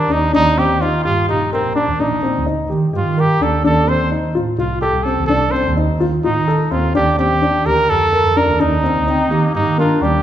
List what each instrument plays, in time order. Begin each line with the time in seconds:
Already playing: flugelhorn D4
0.10 double bass D#2, grand piano D4, flugelhorn D#4
0.33 double bass D#2, grand piano D4, flugelhorn D#4
0.57 grand piano C4, flugelhorn G4
0.70 double bass D#3
0.81 grand piano D#4, flugelhorn F4
1.04 double bass G2, flugelhorn F4, grand piano G4
1.28 double bass A#1, flugelhorn D#4, grand piano G4
1.53 flugelhorn C4, grand piano A#4
1.64 double bass A#1
1.75 flugelhorn D4, grand piano D4
1.87 double bass D#2
1.99 double bass A#1, grand piano D4, flugelhorn D#4
2.23 grand piano C4
2.35 double bass D2
2.46 grand piano D#4
2.70 double bass D#3, grand piano G4
2.93 double bass G2, flugelhorn F4, grand piano G4
3.05 double bass D#3
3.17 flugelhorn G4, grand piano A#4
3.41 double bass D#2, grand piano D4, flugelhorn A4
3.64 double bass D#2, grand piano D4, flugelhorn A4
3.88 grand piano C4, flugelhorn C5
3.99 double bass D#3
4.12 grand piano D#4
4.34 double bass A2, grand piano F4
4.58 double bass C2, grand piano F4, flugelhorn F4
4.81 flugelhorn G4, grand piano A4
4.93 double bass C2
5.03 grand piano C4, flugelhorn A4
5.17 double bass D#2
5.26 double bass C2, grand piano D4, flugelhorn A4
5.51 grand piano C4, flugelhorn C5
5.64 double bass D#2
5.77 grand piano D#4
6.00 double bass D#3, grand piano F4
6.24 double bass A2, flugelhorn D#4, grand piano F4
6.36 double bass D#3
6.48 grand piano A4
6.71 double bass D#2, grand piano C4, flugelhorn F4
6.95 double bass D#2, grand piano D4, flugelhorn G4
7.19 grand piano C4, flugelhorn G4
7.30 double bass D#3
7.42 grand piano D4
7.65 double bass D2, grand piano G4, flugelhorn A#4
7.89 double bass F2, grand piano G4, flugelhorn A4
8.12 grand piano A#4
8.25 double bass F2
8.37 grand piano D4, flugelhorn A#4
8.48 double bass D#2
8.60 double bass D#2, grand piano D4, flugelhorn D#4
8.83 grand piano C4
8.96 double bass D2
9.08 clarinet C4, grand piano D#4
9.30 double bass D#3, clarinet A#3, grand piano G4
9.54 double bass G2, flugelhorn D#4, grand piano G4
9.65 double bass D#3
9.78 clarinet D4, flugelhorn F4, grand piano A#4
10.01 double bass D#2, clarinet G3, grand piano D4, flugelhorn G4